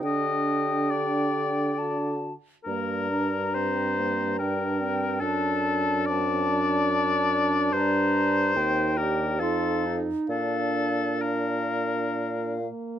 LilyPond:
<<
  \new Staff \with { instrumentName = "Flute" } { \time 3/4 \key g \minor \tempo 4 = 69 g''2 a''8 r8 | bes''8 bes''4. g''8 g''8 | a''4 a''4 a''4 | \key bes \major bes''4 g''4 f''4 |
f''4 f''4. r8 | }
  \new Staff \with { instrumentName = "Oboe" } { \time 3/4 \key g \minor ees''4 d''4. r8 | bes'4 c''4 bes'4 | a'4 d''2 | \key bes \major c''4. bes'8 a'8 r8 |
a'4 bes'4. r8 | }
  \new Staff \with { instrumentName = "Clarinet" } { \time 3/4 \key g \minor d'2~ d'8 r8 | bes8 d'8 c'8 bes8 d'8 c'8 | d'2.~ | \key bes \major d'4 ees'8 g'8 f'8 ees'8 |
d'2~ d'8 r8 | }
  \new Staff \with { instrumentName = "French horn" } { \time 3/4 \key g \minor g'2 fis'8 r8 | d'4 c'8 c'8 d'4 | d'4 c'8 d'8 d'4 | \key bes \major d'4 c'8 d'8 ees'4 |
d'4 d'4. bes8 | }
  \new Staff \with { instrumentName = "Bassoon" } { \clef bass \time 3/4 \key g \minor d2~ d8 r8 | g,2. | fis,2. | \key bes \major g,4 ees,4 f,4 |
bes,2~ bes,8 r8 | }
>>